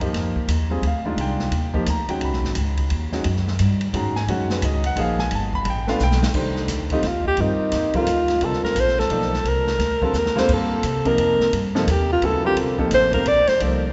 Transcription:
Already playing: upright bass F#2
0.01 grand piano F3 A#3 D#4 G4, kick, ride
0.13 upright bass F2, snare, ride
0.36 muted upright bass stroke, kick
0.48 upright bass D#2, hi-hat pedal, ride
0.70 grand piano G3 C4 F4 G#4
0.82 upright bass D2, ride
0.87 grand piano F5
1.05 grand piano D#3 G#3 D4 F4 D5
1.16 upright bass C2, ride
1.21 grand piano G5
1.39 snare
1.51 upright bass D#2, ride
1.74 grand piano F3 A#3 D#4 G4, kick
1.86 upright bass D2, grand piano A#5, hi-hat pedal, ride
2.08 grand piano D#3 G#3 C#4 F#4 G5, muted upright bass stroke, ride
2.21 upright bass C#2, grand piano B5, ride
2.32 upright bass B1, snare
2.44 upright bass G#1, snare
2.55 upright bass C#2, hi-hat pedal, ride
2.77 kick, ride
2.90 upright bass D#2, ride
3.12 grand piano D#3 G#3 C#4 F#4, snare
3.24 upright bass F#2, ride
3.36 snare
3.48 snare
3.59 upright bass G2, hi-hat pedal, ride
3.81 ride
3.93 upright bass G#2, grand piano D#3 G#3 C#4 F#4 A#5, ride
4.16 grand piano G#5, snare
4.27 upright bass F#2, grand piano D#3 G#3 C#4 F#4 F#5, ride
4.50 grand piano B4, snare
4.61 upright bass C#2, grand piano D#5, hi-hat pedal, ride
4.84 grand piano F#5, ride
4.96 upright bass A#1, grand piano F3 A#3 D#4 G#4, ride
5.00 grand piano F5
5.19 grand piano G#5, snare
5.31 upright bass G1, ride
5.35 grand piano A5
5.53 grand piano B5, kick
5.65 upright bass A1, ride
5.70 grand piano G5
5.87 grand piano A3 B3 D4 F4 F5, snare
5.99 upright bass B1, snare, hi-hat pedal
6.03 grand piano G5
6.11 snare
6.23 snare
6.34 upright bass C2, grand piano D#3 A3 D4 G4 C5, kick, crash
6.56 snare
6.68 upright bass D2, snare, hi-hat pedal, ride
6.90 grand piano D3 G3 C4 F4 G4, alto saxophone D#4, kick, ride
7.03 upright bass D#2, snare, ride
7.07 alto saxophone F4
7.25 alto saxophone G4, kick
7.37 upright bass G2, grand piano D#3 G3 C4 F4 A#4, ride
7.41 alto saxophone D#4
7.72 upright bass D#2, snare, hi-hat pedal, ride
7.93 grand piano D3 G3 C4 F4 A#4, alto saxophone F4, muted upright bass stroke, kick, ride
8.06 upright bass D2, hi-hat pedal, ride
8.28 snare, ride
8.41 upright bass C2, grand piano D3 G3 C4 F4 A#4, alto saxophone A4, ride
8.53 snare
8.63 alto saxophone A#4, muted upright bass stroke, snare
8.75 upright bass A#1, hi-hat pedal, ride
8.80 alto saxophone C5
8.88 snare
8.99 alto saxophone A4, snare
9.09 upright bass B1, grand piano F3 A#3 D#4 A4 D5, ride
9.22 snare
9.34 snare
9.44 upright bass C2, ride
9.49 alto saxophone A#4
9.67 snare
9.79 upright bass D2, snare, ride
10.01 grand piano D3 G3 C4 F4 A#4, alto saxophone A4, muted upright bass stroke, kick
10.13 upright bass D#2, snare, hi-hat pedal
10.19 alto saxophone A#4
10.26 snare
10.36 grand piano D3 G3 A#3 C4 F4, alto saxophone C5, snare
10.49 upright bass G2, kick, crash
10.53 alto saxophone A4
10.83 upright bass C3, hi-hat pedal, ride
11.05 grand piano C3 F3 A#3 D#4 A#4, alto saxophone A#4, kick, ride
11.18 upright bass F2, ride
11.39 muted upright bass stroke, snare
11.53 upright bass G2, ride
11.75 grand piano C3 F3 A#3 D#4 A4, snare
11.87 upright bass D#2, hi-hat pedal, ride
11.91 alto saxophone G4
12.12 alto saxophone F4
12.22 upright bass D2, grand piano C#3 F#3 B3 E4 A4, alto saxophone A4, ride
12.44 grand piano D3 G3 C4 F4 A#4, alto saxophone G4
12.56 upright bass C2, ride
12.78 grand piano C3 F3 A#3 D#4 A4, kick
12.91 upright bass A1, alto saxophone C5, snare, hi-hat pedal, ride
13.13 grand piano D3 G3 C4 F4 A#4, alto saxophone A#4, kick, ride
13.25 upright bass A#1, alto saxophone D5, ride
13.47 alto saxophone C5, muted upright bass stroke, snare, ride
13.60 upright bass C2, grand piano F3 A#3 D#4 A4 D5, ride

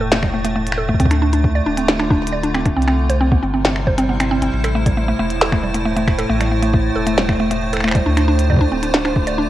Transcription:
Already playing: sub bass E1, ambient pad A2 A3
0.01 synth arpeggio sound A4
0.12 synth arpeggio sound A3, snare, closed hi-hat
0.23 synth arpeggio sound G3, finger snap, kick
0.34 synth arpeggio sound A3
0.45 synth arpeggio sound A3, closed hi-hat
0.56 synth arpeggio sound A3
0.67 closed hi-hat
0.72 finger snap
0.78 synth arpeggio sound A4
0.89 synth arpeggio sound A3, kick
0.95 kick
1.00 sub bass D2, ambient pad D3, synth arpeggio sound C4, kick, closed hi-hat
1.06 kick
1.11 synth arpeggio sound D4, finger snap, closed hi-hat
1.22 synth arpeggio sound D4
1.30 synth arpeggio sound D4, ambient pad F4, closed hi-hat
1.44 kick
1.55 synth arpeggio sound D5
1.66 sub bass D1, synth arpeggio sound D4
1.77 synth arpeggio sound C4, closed hi-hat
1.88 synth arpeggio sound D4, snare
1.99 synth arpeggio sound D4, finger snap
2.10 synth arpeggio sound D4, kick
2.27 closed hi-hat
2.32 synth arpeggio sound D5
2.43 synth arpeggio sound D4, closed hi-hat
2.54 synth arpeggio sound C4, finger snap
2.66 synth arpeggio sound D4, finger snap, kick, closed hi-hat
2.77 sub bass C2, ambient pad C3, synth arpeggio sound C4
2.82 closed hi-hat
2.88 synth arpeggio sound C4, finger snap
3.10 ambient pad G3, synth arpeggio sound C5, closed hi-hat
3.21 synth arpeggio sound C4
3.32 synth arpeggio sound B3, kick
3.41 sub bass G1, synth arpeggio sound C4, ambient pad E4
3.53 synth arpeggio sound C4, ambient pad C5
3.65 synth arpeggio sound C4, snare
3.76 finger snap
3.87 synth arpeggio sound C5, kick
3.98 synth arpeggio sound C4, closed hi-hat
4.09 synth arpeggio sound B3
4.20 synth arpeggio sound C4, finger snap, closed hi-hat
4.31 synth arpeggio sound C4
4.42 sub bass G1, synth arpeggio sound C4, closed hi-hat
4.53 sub bass A1, ambient pad A2
4.64 synth arpeggio sound A4, finger snap, closed hi-hat
4.75 synth arpeggio sound A3, ambient pad A3
4.86 synth arpeggio sound G3, kick, closed hi-hat
4.97 synth arpeggio sound A3
5.08 synth arpeggio sound A3
5.19 sub bass E1, synth arpeggio sound A3
5.30 closed hi-hat
5.41 synth arpeggio sound A4, snare
5.52 synth arpeggio sound A3, finger snap, kick
5.63 synth arpeggio sound G3
5.74 synth arpeggio sound A3, closed hi-hat
5.85 synth arpeggio sound A3
5.96 synth arpeggio sound A3, closed hi-hat
6.07 finger snap, kick
6.18 synth arpeggio sound A4, finger snap, closed hi-hat
6.29 sub bass A1, synth arpeggio sound A3
6.40 synth arpeggio sound G3, finger snap, closed hi-hat
6.52 synth arpeggio sound A3
6.63 synth arpeggio sound A3, closed hi-hat
6.74 synth arpeggio sound A3, kick
6.96 sub bass E1, synth arpeggio sound A4
7.07 synth arpeggio sound A3, closed hi-hat
7.18 synth arpeggio sound G3, snare
7.29 synth arpeggio sound A3, finger snap, kick
7.40 synth arpeggio sound A3
7.51 synth arpeggio sound A3, closed hi-hat
7.73 synth arpeggio sound A4, finger snap, closed hi-hat
7.77 finger snap
7.80 synth arpeggio sound A3, finger snap
7.84 finger snap
7.88 finger snap
7.91 synth arpeggio sound G3, finger snap, kick, closed hi-hat
8.06 sub bass D2, ambient pad D3, synth arpeggio sound D4
8.17 synth arpeggio sound D4, finger snap, closed hi-hat
8.28 synth arpeggio sound D4
8.32 ambient pad F4
8.39 closed hi-hat
8.50 synth arpeggio sound D5, kick
8.52 kick
8.54 kick
8.57 kick
8.59 synth arpeggio sound D4, kick
8.72 sub bass D1, synth arpeggio sound C4
8.83 synth arpeggio sound D4, closed hi-hat
8.94 synth arpeggio sound D4, snare
9.05 synth arpeggio sound D4, finger snap
9.16 kick
9.27 synth arpeggio sound D5, closed hi-hat
9.38 synth arpeggio sound D4

